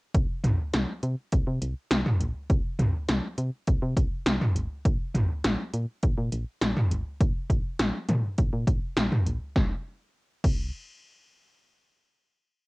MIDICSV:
0, 0, Header, 1, 3, 480
1, 0, Start_track
1, 0, Tempo, 588235
1, 119, Time_signature, 4, 2, 24, 8
1, 10340, End_track
2, 0, Start_track
2, 0, Title_t, "FM bass"
2, 0, Program_c, 0, 39
2, 119, Note_on_c, 0, 36, 99
2, 220, Note_off_c, 0, 36, 0
2, 359, Note_on_c, 0, 36, 102
2, 460, Note_off_c, 0, 36, 0
2, 599, Note_on_c, 0, 36, 99
2, 700, Note_off_c, 0, 36, 0
2, 839, Note_on_c, 0, 48, 103
2, 940, Note_off_c, 0, 48, 0
2, 1081, Note_on_c, 0, 36, 105
2, 1181, Note_off_c, 0, 36, 0
2, 1199, Note_on_c, 0, 48, 93
2, 1300, Note_off_c, 0, 48, 0
2, 1319, Note_on_c, 0, 36, 101
2, 1420, Note_off_c, 0, 36, 0
2, 1559, Note_on_c, 0, 36, 111
2, 1660, Note_off_c, 0, 36, 0
2, 1799, Note_on_c, 0, 34, 91
2, 1900, Note_off_c, 0, 34, 0
2, 2039, Note_on_c, 0, 36, 108
2, 2140, Note_off_c, 0, 36, 0
2, 2279, Note_on_c, 0, 36, 97
2, 2381, Note_off_c, 0, 36, 0
2, 2519, Note_on_c, 0, 36, 102
2, 2620, Note_off_c, 0, 36, 0
2, 2759, Note_on_c, 0, 48, 96
2, 2860, Note_off_c, 0, 48, 0
2, 3001, Note_on_c, 0, 36, 96
2, 3101, Note_off_c, 0, 36, 0
2, 3119, Note_on_c, 0, 48, 103
2, 3220, Note_off_c, 0, 48, 0
2, 3237, Note_on_c, 0, 36, 96
2, 3339, Note_off_c, 0, 36, 0
2, 3479, Note_on_c, 0, 36, 102
2, 3580, Note_off_c, 0, 36, 0
2, 3719, Note_on_c, 0, 32, 90
2, 3820, Note_off_c, 0, 32, 0
2, 3959, Note_on_c, 0, 34, 106
2, 4061, Note_off_c, 0, 34, 0
2, 4199, Note_on_c, 0, 34, 105
2, 4300, Note_off_c, 0, 34, 0
2, 4440, Note_on_c, 0, 34, 102
2, 4541, Note_off_c, 0, 34, 0
2, 4679, Note_on_c, 0, 46, 98
2, 4780, Note_off_c, 0, 46, 0
2, 4921, Note_on_c, 0, 34, 104
2, 5021, Note_off_c, 0, 34, 0
2, 5040, Note_on_c, 0, 46, 97
2, 5141, Note_off_c, 0, 46, 0
2, 5160, Note_on_c, 0, 34, 104
2, 5261, Note_off_c, 0, 34, 0
2, 5400, Note_on_c, 0, 34, 99
2, 5501, Note_off_c, 0, 34, 0
2, 5640, Note_on_c, 0, 32, 90
2, 5741, Note_off_c, 0, 32, 0
2, 5880, Note_on_c, 0, 34, 106
2, 5981, Note_off_c, 0, 34, 0
2, 6119, Note_on_c, 0, 34, 96
2, 6220, Note_off_c, 0, 34, 0
2, 6360, Note_on_c, 0, 34, 96
2, 6461, Note_off_c, 0, 34, 0
2, 6599, Note_on_c, 0, 46, 97
2, 6701, Note_off_c, 0, 46, 0
2, 6841, Note_on_c, 0, 34, 102
2, 6941, Note_off_c, 0, 34, 0
2, 6959, Note_on_c, 0, 46, 95
2, 7060, Note_off_c, 0, 46, 0
2, 7077, Note_on_c, 0, 34, 94
2, 7179, Note_off_c, 0, 34, 0
2, 7319, Note_on_c, 0, 34, 100
2, 7420, Note_off_c, 0, 34, 0
2, 7559, Note_on_c, 0, 34, 92
2, 7660, Note_off_c, 0, 34, 0
2, 7799, Note_on_c, 0, 36, 102
2, 7933, Note_off_c, 0, 36, 0
2, 8519, Note_on_c, 0, 36, 96
2, 8742, Note_off_c, 0, 36, 0
2, 10340, End_track
3, 0, Start_track
3, 0, Title_t, "Drums"
3, 119, Note_on_c, 9, 36, 116
3, 119, Note_on_c, 9, 42, 69
3, 200, Note_off_c, 9, 36, 0
3, 200, Note_off_c, 9, 42, 0
3, 357, Note_on_c, 9, 45, 92
3, 360, Note_on_c, 9, 42, 55
3, 438, Note_off_c, 9, 45, 0
3, 441, Note_off_c, 9, 42, 0
3, 599, Note_on_c, 9, 42, 80
3, 600, Note_on_c, 9, 38, 115
3, 680, Note_off_c, 9, 42, 0
3, 682, Note_off_c, 9, 38, 0
3, 838, Note_on_c, 9, 42, 63
3, 920, Note_off_c, 9, 42, 0
3, 1077, Note_on_c, 9, 42, 69
3, 1081, Note_on_c, 9, 36, 85
3, 1158, Note_off_c, 9, 42, 0
3, 1162, Note_off_c, 9, 36, 0
3, 1319, Note_on_c, 9, 42, 81
3, 1401, Note_off_c, 9, 42, 0
3, 1557, Note_on_c, 9, 38, 111
3, 1560, Note_on_c, 9, 42, 74
3, 1638, Note_off_c, 9, 38, 0
3, 1641, Note_off_c, 9, 42, 0
3, 1681, Note_on_c, 9, 45, 93
3, 1762, Note_off_c, 9, 45, 0
3, 1800, Note_on_c, 9, 42, 72
3, 1882, Note_off_c, 9, 42, 0
3, 2039, Note_on_c, 9, 36, 115
3, 2039, Note_on_c, 9, 42, 66
3, 2121, Note_off_c, 9, 36, 0
3, 2121, Note_off_c, 9, 42, 0
3, 2277, Note_on_c, 9, 45, 95
3, 2280, Note_on_c, 9, 42, 55
3, 2359, Note_off_c, 9, 45, 0
3, 2362, Note_off_c, 9, 42, 0
3, 2519, Note_on_c, 9, 42, 78
3, 2521, Note_on_c, 9, 38, 116
3, 2601, Note_off_c, 9, 42, 0
3, 2602, Note_off_c, 9, 38, 0
3, 2759, Note_on_c, 9, 42, 65
3, 2840, Note_off_c, 9, 42, 0
3, 2998, Note_on_c, 9, 42, 70
3, 3001, Note_on_c, 9, 36, 88
3, 3079, Note_off_c, 9, 42, 0
3, 3082, Note_off_c, 9, 36, 0
3, 3237, Note_on_c, 9, 36, 92
3, 3239, Note_on_c, 9, 42, 82
3, 3319, Note_off_c, 9, 36, 0
3, 3321, Note_off_c, 9, 42, 0
3, 3477, Note_on_c, 9, 38, 110
3, 3480, Note_on_c, 9, 42, 74
3, 3558, Note_off_c, 9, 38, 0
3, 3562, Note_off_c, 9, 42, 0
3, 3601, Note_on_c, 9, 45, 89
3, 3683, Note_off_c, 9, 45, 0
3, 3721, Note_on_c, 9, 42, 72
3, 3802, Note_off_c, 9, 42, 0
3, 3959, Note_on_c, 9, 36, 115
3, 3960, Note_on_c, 9, 42, 67
3, 4041, Note_off_c, 9, 36, 0
3, 4041, Note_off_c, 9, 42, 0
3, 4198, Note_on_c, 9, 45, 94
3, 4201, Note_on_c, 9, 42, 55
3, 4280, Note_off_c, 9, 45, 0
3, 4283, Note_off_c, 9, 42, 0
3, 4440, Note_on_c, 9, 42, 75
3, 4441, Note_on_c, 9, 38, 113
3, 4521, Note_off_c, 9, 42, 0
3, 4522, Note_off_c, 9, 38, 0
3, 4679, Note_on_c, 9, 42, 67
3, 4760, Note_off_c, 9, 42, 0
3, 4918, Note_on_c, 9, 42, 70
3, 4921, Note_on_c, 9, 36, 89
3, 4999, Note_off_c, 9, 42, 0
3, 5003, Note_off_c, 9, 36, 0
3, 5159, Note_on_c, 9, 42, 80
3, 5241, Note_off_c, 9, 42, 0
3, 5397, Note_on_c, 9, 38, 112
3, 5401, Note_on_c, 9, 42, 73
3, 5479, Note_off_c, 9, 38, 0
3, 5482, Note_off_c, 9, 42, 0
3, 5521, Note_on_c, 9, 45, 92
3, 5603, Note_off_c, 9, 45, 0
3, 5641, Note_on_c, 9, 42, 71
3, 5722, Note_off_c, 9, 42, 0
3, 5880, Note_on_c, 9, 36, 115
3, 5880, Note_on_c, 9, 42, 66
3, 5961, Note_off_c, 9, 36, 0
3, 5962, Note_off_c, 9, 42, 0
3, 6119, Note_on_c, 9, 36, 84
3, 6121, Note_on_c, 9, 42, 55
3, 6200, Note_off_c, 9, 36, 0
3, 6202, Note_off_c, 9, 42, 0
3, 6360, Note_on_c, 9, 42, 78
3, 6361, Note_on_c, 9, 38, 111
3, 6441, Note_off_c, 9, 42, 0
3, 6443, Note_off_c, 9, 38, 0
3, 6599, Note_on_c, 9, 42, 65
3, 6600, Note_on_c, 9, 47, 92
3, 6681, Note_off_c, 9, 42, 0
3, 6682, Note_off_c, 9, 47, 0
3, 6838, Note_on_c, 9, 42, 70
3, 6841, Note_on_c, 9, 36, 86
3, 6919, Note_off_c, 9, 42, 0
3, 6923, Note_off_c, 9, 36, 0
3, 7077, Note_on_c, 9, 36, 95
3, 7079, Note_on_c, 9, 42, 78
3, 7159, Note_off_c, 9, 36, 0
3, 7161, Note_off_c, 9, 42, 0
3, 7317, Note_on_c, 9, 38, 110
3, 7320, Note_on_c, 9, 42, 70
3, 7398, Note_off_c, 9, 38, 0
3, 7402, Note_off_c, 9, 42, 0
3, 7441, Note_on_c, 9, 45, 95
3, 7522, Note_off_c, 9, 45, 0
3, 7560, Note_on_c, 9, 42, 69
3, 7641, Note_off_c, 9, 42, 0
3, 7799, Note_on_c, 9, 36, 101
3, 7799, Note_on_c, 9, 38, 84
3, 7880, Note_off_c, 9, 38, 0
3, 7881, Note_off_c, 9, 36, 0
3, 8519, Note_on_c, 9, 36, 105
3, 8519, Note_on_c, 9, 49, 83
3, 8600, Note_off_c, 9, 49, 0
3, 8601, Note_off_c, 9, 36, 0
3, 10340, End_track
0, 0, End_of_file